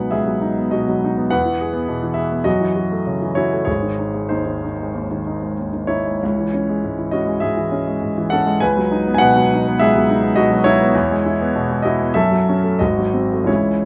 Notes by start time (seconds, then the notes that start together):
Already playing: C#2 B2 F#3 B3 D#4 B4 F#5 G#5
0.11 C#2 G#4 E5
0.26 F#3
0.42 D#4
0.59 B3
0.71 B2 F#4 D#5
0.88 F#3
1.04 D#4
1.18 B3
1.30 E2 B4 F#5
1.46 E3
1.61 G#4
1.73 B3
1.89 B2
2.03 E3
2.14 G#4 E5
2.32 B3
2.44 F#2 F#4 D#5
2.61 E3
2.76 F#4
2.92 A3
3.07 C#3
3.22 E3
3.35 E4 F#4 C#5
3.52 A3
3.65 G#1 G#4 C#5
3.83 D#3
3.99 D#4
4.14 G#3
4.29 D#2 D#4 C5
4.46 D#3
4.64 D#4
4.81 G#3
4.95 D#2
5.11 D#3
5.27 D#4
5.42 G#3
5.59 D#2
5.73 D#3
5.87 D#4 E4 C#5
6.05 G#3
6.23 C#2
6.38 E3
6.54 C#4
6.69 G#3
6.84 G#2
6.98 E3
7.11 C#4 F#4 D#5
7.27 G#3
7.40 G#2 G#4 E5
7.57 E3
7.71 C#4
7.87 G#3
8.02 G#2
8.18 E3
8.30 C#4 A4 F#5
8.47 G#3
8.60 C#2 B4 G#5
8.77 F#3
8.91 D#4
9.07 B3
9.14 F#5 G#5
9.20 B2 B4
9.36 F#3
9.53 D#4
9.68 B3
9.79 C#2 G#4 E5
9.96 F#3
10.10 D#4
10.23 B3
10.36 B2 F#4 D#5
10.52 F#3
10.64 D#4 E4 C#5
10.82 B3
10.95 E2
11.11 G#3
11.26 E4
11.41 B3
11.56 B2
11.69 G#3
11.82 E4 F#4 D#5
12.01 B3
12.14 F#2 A4 E5
12.32 F#3
12.49 C#4
12.64 A3
12.79 G#1 F#4 D#5
12.98 F#3
13.14 C4
13.33 A3
13.44 C#2 E3 G#3 C#4 C#5
13.48 E4